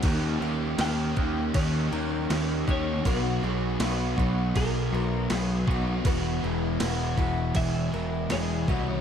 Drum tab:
CC |x-x-x-x-|x-x-x-x-|x-x-x-x-|
SD |--o---o-|--o---o-|--o---o-|
BD |o--oo--o|o--oo--o|o--oo--o|